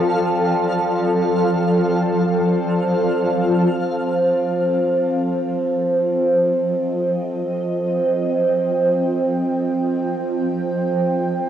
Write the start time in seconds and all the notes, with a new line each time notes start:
Already playing: F3 C4 F4 A4 D5 F5 A5
3.72 F3 C4
5.71 D#5
6.33 G5